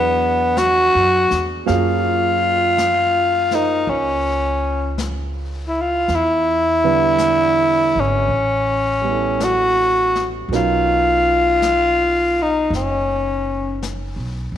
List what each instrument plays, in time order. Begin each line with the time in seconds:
Already playing: upright bass E2, grand piano F#3 B3 D4 E4 G#4, tenor saxophone B3
0.57 tenor saxophone F#4, brush sweep, snare, hi-hat pedal
0.95 upright bass F#2
1.30 upright bass E2, snare
1.66 upright bass F#2, grand piano F#3 A#3 C#4 F4 G#4, tenor saxophone F4, brush sweep, snare
2.78 brush sweep, snare, hi-hat pedal
3.51 tenor saxophone D#4, grand piano F4 A#4 C5, snare
3.87 upright bass C#2, tenor saxophone C#4, brush sweep
4.98 brush sweep, snare, hi-hat pedal
5.68 tenor saxophone E4
5.81 tenor saxophone F4
6.08 upright bass E2, brush sweep, snare
6.15 tenor saxophone E4
6.84 grand piano D3 G3 B3 E4 B4
7.18 brush sweep, snare, hi-hat pedal
7.95 upright bass G#1
8.00 tenor saxophone C#4
8.28 upright bass A1, brush sweep
9.02 grand piano G3 B3
9.07 grand piano C#4 E4
9.12 grand piano A4
9.40 tenor saxophone F#4, brush sweep, snare, hi-hat pedal
10.15 snare
10.49 upright bass B1, grand piano B2 F#3 C#4 A#4, brush sweep, snare
10.53 grand piano D#4, tenor saxophone F4
11.62 brush sweep, snare, hi-hat pedal
12.42 tenor saxophone D#4
12.70 upright bass F#1, brush sweep, snare
12.75 tenor saxophone C#4
13.82 brush sweep, snare, hi-hat pedal
14.16 upright bass B1
14.52 upright bass C#2